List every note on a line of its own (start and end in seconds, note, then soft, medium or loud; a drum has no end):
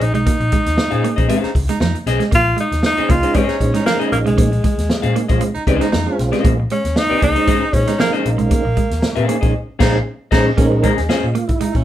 0.01 0.11 A#1 medium
0.01 0.15 D#4 medium
0.01 closed hi-hat medium
0.14 0.23 B1 medium
0.14 0.22 G#3 medium
0.14 1.65 D#4 medium
0.14 closed hi-hat soft
0.26 0.35 A#3 medium
0.26 kick loud
0.26 closed hi-hat medium
0.40 0.49 A#1 medium
0.40 muted clean electric guitar stroke soft
0.40 closed hi-hat soft
0.52 0.61 G#3 medium
0.52 kick medium
0.52 closed hi-hat medium
0.66 0.75 D#2 medium
0.66 snare soft
0.66 closed hi-hat medium
0.78 muted picked electric bass stroke soft
0.78 snare loud
0.91 1.01 A#2 medium
0.91 1.06 C#4 medium
0.91 1.06 G#4 medium
0.91 1.06 C5 medium
0.91 1.06 F5 medium
0.91 closed hi-hat soft
1.04 1.13 A#3 medium
1.04 closed hi-hat medium
1.16 1.27 A#1 medium
1.16 1.27 C#4 soft
1.16 1.27 G#4 medium
1.16 1.28 C5 medium
1.16 1.28 D#5 medium
1.16 kick medium
1.16 closed hi-hat soft
1.28 1.39 G#3 medium
1.28 1.49 C#4 medium
1.28 1.49 G#4 medium
1.28 1.50 C5 medium
1.28 1.50 F5 medium
1.28 closed hi-hat medium
1.43 1.51 D#4 medium
1.43 muted picked electric bass stroke soft
1.43 snare soft
1.43 closed hi-hat soft
1.55 1.66 C#2 medium
1.55 muted clean electric guitar stroke soft
1.55 kick medium
1.55 open hi-hat medium
1.68 1.77 G#3 medium
1.68 1.77 D#4 medium
1.68 snare soft
1.68 closed hi-hat medium
1.80 1.91 F2 medium
1.80 1.90 F3 medium
1.80 1.98 D#4 medium
1.80 snare medium
1.95 muted clean electric guitar stroke soft
1.95 closed hi-hat soft
2.06 2.17 B1 medium
2.06 2.23 C#4 medium
2.06 2.23 G#4 medium
2.06 2.23 C5 medium
2.06 2.23 D#5 medium
2.06 snare soft
2.06 closed hi-hat medium
2.20 2.28 G#3 medium
2.20 snare soft
2.20 closed hi-hat soft
2.31 2.52 A#1 loud
2.31 2.40 A#3 medium
2.31 2.58 F4 loud
2.31 kick loud
2.31 closed hi-hat medium
2.45 muted clean electric guitar stroke soft
2.57 2.66 G#3 medium
2.57 2.83 D#4 medium
2.57 closed hi-hat medium
2.72 2.81 D#2 medium
2.72 snare soft
2.72 closed hi-hat medium
2.83 3.12 D#4 loud
2.83 snare loud
2.97 3.13 C#4 medium
2.97 3.13 G#4 medium
2.97 3.12 C5 medium
2.97 3.12 D#5 medium
2.97 muted picked electric bass stroke soft
2.97 closed hi-hat soft
3.09 3.20 C#2 medium
3.09 3.18 A#3 medium
3.09 3.16 C#4 medium
3.09 3.16 D#4 medium
3.09 3.37 F4 loud
3.09 kick loud
3.09 closed hi-hat medium
3.23 3.41 G#3 medium
3.23 3.42 C4 medium
3.23 3.42 C#4 medium
3.23 3.34 C#4 soft
3.23 3.42 D#4 medium
3.23 3.34 G#4 soft
3.23 3.34 C5 medium
3.23 3.34 D#5 medium
3.23 closed hi-hat medium
3.34 3.46 G#2 medium
3.34 3.44 G#3 medium
3.34 3.55 C#4 medium
3.34 3.86 C#4 medium
3.34 3.56 G#4 medium
3.34 3.56 C5 medium
3.34 3.56 D#5 medium
3.34 kick medium
3.34 closed hi-hat medium
3.48 3.57 D#4 medium
3.48 snare soft
3.48 closed hi-hat soft
3.60 3.71 A#2 medium
3.60 3.80 G#3 medium
3.60 3.80 C4 medium
3.60 3.80 C#4 medium
3.60 3.80 D#4 medium
3.60 muted clean electric guitar stroke soft
3.60 kick medium
3.60 closed hi-hat medium
3.74 3.82 G#3 medium
3.74 3.83 D#4 medium
3.74 snare soft
3.74 closed hi-hat medium
3.85 3.95 F3 medium
3.85 3.98 A#3 medium
3.85 3.99 C#4 medium
3.85 4.20 D#4 loud
3.85 3.98 G#4 medium
3.85 3.98 C5 medium
3.85 3.99 F5 medium
3.85 snare loud
3.99 4.51 G#3 medium
3.99 4.51 C4 medium
3.99 4.15 C#4 medium
3.99 4.51 C#4 medium
3.99 4.51 D#4 medium
3.99 4.15 G#4 medium
3.99 4.15 C5 medium
3.99 4.15 D#5 medium
3.99 muted clean electric guitar stroke soft
3.99 closed hi-hat soft
4.12 4.23 A#1 medium
4.12 4.18 A#3 medium
4.12 closed hi-hat medium
4.26 4.35 B1 medium
4.26 4.34 G#3 medium
4.26 5.77 G#3 medium
4.26 closed hi-hat soft
4.38 4.58 A#1 loud
4.38 4.47 A#3 medium
4.38 kick loud
4.38 closed hi-hat medium
4.52 muted clean electric guitar stroke soft
4.52 closed hi-hat soft
4.64 4.73 G#3 medium
4.64 kick loud
4.64 closed hi-hat medium
4.78 4.87 D#2 medium
4.78 snare soft
4.78 closed hi-hat medium
4.90 muted picked electric bass stroke soft
4.90 snare loud
5.02 5.13 A#2 medium
5.02 5.18 C#4 medium
5.02 5.18 G#4 medium
5.02 5.18 C5 medium
5.02 5.18 F5 medium
5.02 closed hi-hat soft
5.15 5.24 A#3 medium
5.15 5.22 C#4 medium
5.15 5.22 D#4 loud
5.15 closed hi-hat medium
5.28 5.39 A#1 medium
5.28 5.48 G#3 medium
5.28 5.48 C4 medium
5.28 5.41 C#4 soft
5.28 5.48 C#4 medium
5.28 5.48 F4 loud
5.28 5.40 G#4 soft
5.28 5.40 C5 medium
5.28 5.40 D#5 medium
5.28 kick medium
5.28 closed hi-hat soft
5.40 5.50 G#3 medium
5.40 closed hi-hat medium
5.55 5.62 D#4 medium
5.55 muted picked electric bass stroke medium
5.55 closed hi-hat soft
5.67 5.77 C#2 medium
5.67 5.87 G#3 loud
5.67 5.87 C4 loud
5.67 5.88 C#4 medium
5.67 5.87 C#4 medium
5.67 5.87 D#4 loud
5.67 5.88 G#4 medium
5.67 5.88 C5 loud
5.67 5.88 D#5 medium
5.67 muted clean electric guitar stroke soft
5.67 kick medium
5.67 closed hi-hat medium
5.81 5.89 G#3 medium
5.81 5.89 D#4 medium
5.81 snare soft
5.81 closed hi-hat medium
5.92 6.04 F2 medium
5.92 6.01 F3 medium
5.92 6.26 D#4 loud
5.92 snare loud
6.07 6.57 G#3 medium
6.07 6.57 C4 medium
6.07 6.57 C#4 medium
6.07 6.57 F4 medium
6.07 muted clean electric guitar stroke soft
6.19 6.29 B1 medium
6.19 snare soft
6.19 closed hi-hat medium
6.32 6.40 G#3 medium
6.32 6.52 C#4 medium
6.32 6.52 G#4 medium
6.32 6.52 C5 medium
6.32 6.52 D#5 medium
6.32 snare soft
6.32 closed hi-hat soft
6.45 6.64 A#1 loud
6.45 6.54 A#3 medium
6.45 kick loud
6.45 closed hi-hat medium
6.60 muted clean electric guitar stroke soft
6.70 6.80 G#3 medium
6.70 6.99 C#4 medium
6.70 closed hi-hat medium
6.84 6.93 D#2 medium
6.84 snare soft
6.84 closed hi-hat medium
6.96 7.23 D#4 loud
6.96 snare loud
7.10 7.30 C#4 medium
7.10 7.30 G#4 medium
7.10 7.30 C5 medium
7.10 7.30 D#5 medium
7.10 muted picked electric bass stroke soft
7.22 7.33 C#2 medium
7.22 7.32 A#3 medium
7.22 7.29 C#4 medium
7.22 7.29 D#4 loud
7.22 7.75 D#4 loud
7.22 kick medium
7.22 closed hi-hat medium
7.35 7.54 G#3 medium
7.35 7.54 C4 medium
7.35 7.54 C#4 medium
7.35 7.46 C#4 medium
7.35 7.54 D#4 medium
7.35 7.46 G#4 medium
7.35 7.47 C5 medium
7.35 7.47 D#5 medium
7.35 closed hi-hat soft
7.47 7.58 G#2 medium
7.47 7.57 G#3 medium
7.47 7.63 C#4 medium
7.47 7.64 G#4 medium
7.47 7.64 C5 medium
7.47 7.64 D#5 medium
7.47 kick medium
7.47 closed hi-hat medium
7.61 7.69 D#4 medium
7.73 7.84 A#2 medium
7.73 7.93 G#3 medium
7.73 7.93 C4 medium
7.73 7.99 C#4 medium
7.73 7.93 C#4 medium
7.73 7.93 D#4 medium
7.73 muted clean electric guitar stroke soft
7.73 kick medium
7.73 closed hi-hat medium
7.87 7.95 G#3 medium
7.87 7.95 D#4 medium
7.87 snare soft
7.87 closed hi-hat medium
7.98 8.08 F3 medium
7.98 8.12 A#3 medium
7.98 8.12 C#4 medium
7.98 8.32 D#4 loud
7.98 8.12 G#4 medium
7.98 8.12 C5 medium
7.98 8.12 F5 medium
7.98 snare loud
8.13 8.64 G#3 medium
8.13 8.64 C4 medium
8.13 8.28 C#4 medium
8.13 8.64 C#4 medium
8.13 8.64 D#4 medium
8.13 8.28 G#4 medium
8.13 8.28 C5 medium
8.13 8.28 D#5 medium
8.13 muted clean electric guitar stroke soft
8.13 closed hi-hat soft
8.25 8.36 A#1 medium
8.25 9.76 A#3 medium
8.25 closed hi-hat medium
8.38 8.48 B1 medium
8.38 8.46 G#3 medium
8.38 closed hi-hat soft
8.51 8.60 A#3 medium
8.51 kick loud
8.51 closed hi-hat medium
8.65 8.74 A#1 medium
8.65 muted clean electric guitar stroke soft
8.77 8.86 G#3 medium
8.77 kick medium
8.77 closed hi-hat medium
8.91 9.00 D#2 medium
8.91 snare soft
8.91 closed hi-hat medium
9.02 muted picked electric bass stroke soft
9.02 snare loud
9.15 9.26 A#2 medium
9.15 9.36 C#4 medium
9.15 9.36 G#4 medium
9.15 9.36 C5 medium
9.15 9.36 F5 medium
9.15 closed hi-hat soft
9.29 9.37 A#3 medium
9.29 9.35 C#4 medium
9.29 9.36 D#4 loud
9.29 closed hi-hat medium
9.41 9.52 A#1 medium
9.41 9.54 G#3 medium
9.41 9.54 C4 medium
9.41 9.53 C#4 medium
9.41 9.54 C#4 medium
9.41 9.55 D#4 loud
9.41 9.53 G#4 soft
9.41 9.53 C5 medium
9.41 9.53 D#5 medium
9.41 kick medium
9.41 closed hi-hat soft
9.79 9.98 A#1 loud
9.79 9.98 G#3 loud
9.79 9.98 C4 medium
9.79 9.97 C#4 loud
9.79 9.98 C#4 loud
9.79 9.98 D#4 loud
9.79 9.94 D#4 loud
9.79 9.97 G#4 loud
9.79 9.98 C5 loud
9.79 9.98 F5 loud
9.79 kick loud
9.79 snare loud
9.79 crash medium
10.31 10.50 A#1 loud
10.31 10.50 G#3 medium
10.31 10.50 C4 loud
10.31 10.50 C#4 medium
10.31 10.46 D#4 loud
10.31 10.50 D#4 loud
10.31 10.50 G#4 medium
10.31 10.49 C5 medium
10.31 10.49 D#5 medium
10.31 kick loud
10.31 snare loud
10.31 crash medium
10.57 10.88 A#1 loud
10.57 10.93 G#3 medium
10.57 10.66 A#3 medium
10.57 10.93 C4 medium
10.57 10.66 C#4 loud
10.57 10.93 C#4 medium
10.57 10.93 D#4 medium
10.57 10.95 A#4 loud
10.57 kick loud
10.57 closed hi-hat medium
10.72 muted clean electric guitar stroke soft
10.83 10.92 G#3 medium
10.83 10.93 A#3 medium
10.83 10.99 C#4 medium
10.83 10.99 G#4 medium
10.83 11.00 C5 medium
10.83 11.00 D#5 medium
10.83 kick medium
10.83 closed hi-hat medium
10.97 11.07 D#2 medium
10.97 11.10 G#4 loud
10.97 snare soft
10.97 closed hi-hat medium
11.09 11.25 C#4 medium
11.09 11.30 C#4 loud
11.09 11.50 F4 medium
11.09 11.25 G#4 medium
11.09 11.25 C5 medium
11.09 11.26 D#5 medium
11.09 muted picked electric bass stroke soft
11.09 snare loud
11.24 11.33 A#2 medium
11.35 11.44 A#3 medium
11.35 closed hi-hat medium
11.48 11.58 G#2 medium
11.48 11.84 E4 loud
11.48 kick medium
11.48 closed hi-hat soft
11.60 11.69 G#3 medium
11.60 11.72 D#4 medium
11.60 muted picked electric bass stroke soft
11.60 closed hi-hat medium
11.75 11.84 A#2 loud
11.75 11.83 C#4 medium
11.75 kick medium
11.75 closed hi-hat soft